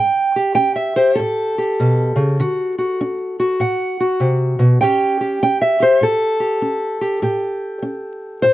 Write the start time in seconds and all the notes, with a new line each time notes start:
Already playing: A2 G5
0.36 G4
0.55 C#4 G5
0.76 E5
0.96 G4 C5
1.15 A4
1.19 A2
1.58 G4
1.80 B2
2.16 C#3
2.40 D3 F#4
2.78 F#4
3.01 D4
3.40 F#4
3.60 A2 F#5
4.00 F#4
4.20 C3
4.59 B2
4.81 A2 C#4 G4 G5
5.21 G4
5.43 C#4 G5
5.62 E5
5.80 G4 C5
6.01 A2 A4
6.40 G4
6.62 C#4
7.01 G4
7.22 A2 G4
7.82 C#4
8.42 A2 C5